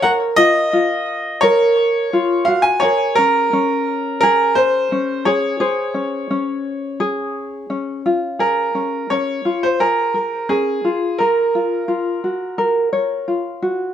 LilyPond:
<<
  \new Staff \with { instrumentName = "Upright piano" } { \time 4/4 \key des \major \tempo 4 = 86 ges''8 ees''4. des''4. f''16 aes''16 | des''8 bes'4. bes'8 c''4 des''8~ | des''2.~ des''8 r8 | bes'4 des''8. c''16 bes'4 aes'4 |
bes'2. r4 | }
  \new Staff \with { instrumentName = "Ukulele" } { \time 4/4 \key des \major <bes' des''>8 f'8 f'4 bes'4 f'8 ges'8 | <aes' bes'>8 des'8 des'4 aes'4 des'8 aes'8 | <aes' c''>8 des'8 des'4 aes'4 des'8 f'8 | aes'8 des'8 des'8 f'8 aes'8 bes'8 des'8 f'8 |
bes'8 f'8 f'8 ges'8 bes'8 des''8 f'8 ges'8 | }
>>